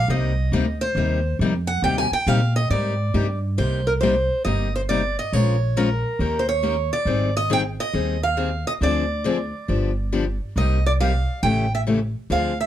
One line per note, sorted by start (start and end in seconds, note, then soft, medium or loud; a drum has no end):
0.08 0.51 C2 medium
0.08 0.32 C3 medium
0.08 0.31 G3 medium
0.08 0.32 A#3 medium
0.08 0.32 D#4 medium
0.08 0.32 G4 medium
0.08 0.77 D#5 medium
0.52 0.94 D2 medium
0.52 0.65 C3 medium
0.52 0.65 G3 loud
0.52 0.65 A#3 medium
0.52 0.65 D#4 loud
0.52 0.65 G4 loud
0.81 1.36 C5 medium
0.95 1.38 D#2 medium
0.95 1.19 C3 medium
0.95 1.19 G3 medium
0.95 1.19 A#3 medium
0.95 1.19 D#4 medium
0.95 1.19 G4 medium
1.39 1.82 F2 medium
1.39 1.52 C3 medium
1.39 1.52 G3 medium
1.39 1.53 A#3 medium
1.39 1.53 D#4 medium
1.39 1.53 G4 medium
1.67 1.83 F#5 loud
1.82 2.09 D#2 medium
1.82 2.06 C3 medium
1.82 2.06 G3 medium
1.82 2.06 A#3 medium
1.82 2.06 D#4 medium
1.82 2.06 G4 medium
1.82 1.98 G5 medium
1.98 2.12 G#5 medium
2.11 2.28 G5 medium
2.11 muted upright bass stroke soft
2.27 2.69 A#2 medium
2.27 2.39 C3 medium
2.27 2.39 G3 medium
2.27 2.39 A#3 loud
2.27 2.39 D#4 medium
2.27 2.39 G4 loud
2.27 2.55 F5 medium
2.56 2.70 D#5 loud
2.70 3.13 G#2 medium
2.70 2.93 C3 medium
2.70 2.93 G3 medium
2.70 2.93 A#3 medium
2.70 2.93 D#4 medium
2.70 2.93 G4 medium
2.70 3.38 D5 medium
3.14 3.56 G2 medium
3.14 3.26 C3 medium
3.14 3.26 G3 medium
3.14 3.26 A#3 medium
3.14 3.26 D#4 medium
3.14 3.26 G4 medium
3.57 4.28 C2 medium
3.57 3.80 C3 medium
3.57 3.80 G3 medium
3.57 3.80 A#3 medium
3.57 3.80 D#4 medium
3.57 3.80 G4 medium
3.57 3.88 C5 medium
3.87 3.92 A#4 medium
4.01 4.14 C3 medium
4.01 4.14 G3 medium
4.01 4.14 A#3 medium
4.01 4.14 D#4 medium
4.01 4.14 G4 medium
4.01 4.42 C5 medium
4.45 5.15 G1 medium
4.45 4.68 C3 medium
4.45 4.67 G3 medium
4.45 4.68 A#3 medium
4.45 4.68 D#4 medium
4.45 4.68 G4 medium
4.45 4.75 D#5 medium
4.76 4.81 C5 medium
4.89 5.01 C3 medium
4.89 5.01 G3 medium
4.89 5.01 A#3 medium
4.89 5.01 D#4 medium
4.89 5.01 G4 medium
4.89 5.16 D5 medium
5.19 5.33 D#5 medium
5.33 6.02 A#1 medium
5.33 5.55 F3 medium
5.33 5.55 G#3 medium
5.33 5.55 C#4 medium
5.33 5.55 F4 medium
5.33 5.56 A#4 medium
5.33 5.78 C#5 medium
5.77 5.88 F3 medium
5.77 5.88 G#3 medium
5.77 5.88 C#4 medium
5.77 5.88 F4 medium
5.77 6.41 A#4 medium
5.77 5.89 A#4 loud
6.19 6.89 D#2 medium
6.19 6.42 D#3 medium
6.19 6.42 A#3 medium
6.19 6.42 C#4 medium
6.19 6.42 G4 medium
6.19 6.42 A#4 medium
6.39 6.48 C5 medium
6.49 6.92 C#5 medium
6.63 6.74 D#3 medium
6.63 6.75 A#3 medium
6.63 6.75 C#4 medium
6.63 6.75 G4 medium
6.63 6.75 A#4 medium
6.93 7.36 D5 medium
7.05 7.76 G#1 medium
7.05 7.29 D#3 medium
7.05 7.29 G3 medium
7.05 7.29 C4 medium
7.05 7.29 D#4 medium
7.05 7.29 G#4 medium
7.37 7.50 D#5 medium
7.50 7.62 D#3 medium
7.50 7.62 G3 medium
7.50 7.62 C4 medium
7.50 7.62 D#4 medium
7.50 7.62 G#4 loud
7.50 7.60 G5 loud
7.80 8.23 D#5 medium
7.93 8.63 D#2 medium
7.93 8.16 D#3 medium
7.93 8.15 G3 medium
7.93 8.16 C4 medium
7.93 8.16 D#4 medium
7.93 8.16 G#4 medium
8.23 8.67 F5 medium
8.37 8.49 D#3 medium
8.37 8.49 G3 medium
8.37 8.49 C4 medium
8.37 8.49 D#4 medium
8.37 8.49 G#4 medium
8.67 8.72 D#5 medium
8.81 9.51 D2 medium
8.81 9.03 D3 medium
8.81 9.03 F3 medium
8.81 9.03 C4 medium
8.81 9.04 D4 medium
8.81 9.04 G#4 medium
8.81 10.37 D5 medium
9.24 9.36 D3 medium
9.24 9.37 F3 medium
9.24 9.36 C4 loud
9.24 9.37 D4 loud
9.24 9.37 G#4 loud
9.68 10.38 G1 medium
9.68 9.90 D3 medium
9.68 9.90 F3 medium
9.68 9.90 B3 medium
9.68 9.91 D4 medium
9.68 9.91 G4 medium
10.12 10.24 D3 medium
10.12 10.24 F3 medium
10.12 10.24 B3 medium
10.12 10.24 D4 medium
10.12 10.24 G4 medium
10.56 11.25 C2 medium
10.56 10.78 C3 medium
10.56 10.78 G3 medium
10.56 10.78 A#3 medium
10.56 10.78 D#4 medium
10.56 10.78 G4 medium
10.56 10.86 D#5 medium
10.86 10.91 D5 medium
11.00 11.11 C3 medium
11.00 11.12 G3 medium
11.00 11.12 A#3 medium
11.00 11.12 D#4 medium
11.00 11.12 G4 medium
11.00 11.40 F5 medium
11.43 12.12 A1 medium
11.43 11.65 C#3 medium
11.43 11.65 E3 medium
11.43 11.65 A3 medium
11.43 11.65 C#4 medium
11.43 11.66 G4 medium
11.43 11.73 G5 medium
11.75 11.81 E5 medium
11.87 11.98 C#3 medium
11.87 11.98 E3 medium
11.87 11.98 A3 medium
11.87 11.99 C#4 medium
11.87 11.99 G4 medium
12.30 12.66 D2 medium
12.30 12.52 D3 medium
12.30 12.52 F3 medium
12.30 12.52 C4 medium
12.30 12.52 D4 medium
12.30 12.52 G#4 medium
12.30 12.58 F5 medium
12.60 12.65 E5 medium